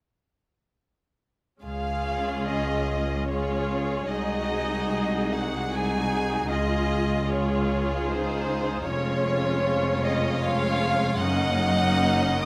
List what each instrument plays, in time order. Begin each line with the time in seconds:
1.62 cello section C#2, double bass section C#2, viola section G#3 C#4, violin section F4 G#4 F5
2.49 violin section D#5
3.29 viola section G#3 C#4, violin section F4 G#4 C#5
4.10 double bass section C2, cello section C2, viola section G#3 D#4, violin section F#4 G#4 D#5
5.31 violin section F#5
5.71 viola section G#3 D#4, violin section F#4 G#4 G#5
6.50 cello section C#2, double bass section C#2, viola section G#3 F4, violin section F4 G#4 D#5
7.28 viola section G#3 F4, violin section F4 G#4 C#5
8.09 viola section D#4, violin section C5
8.86 double bass section F1, cello section F2, viola section G#3 C#4, violin section F4 C#5
10.03 violin section D#5
10.42 viola section G#3 C#4, violin section F4 C#5 F5
11.21 double bass section F#1, cello section F#2, viola section A#3 C#4, violin section D#4 D#5 F#5
12.42 violin section D#6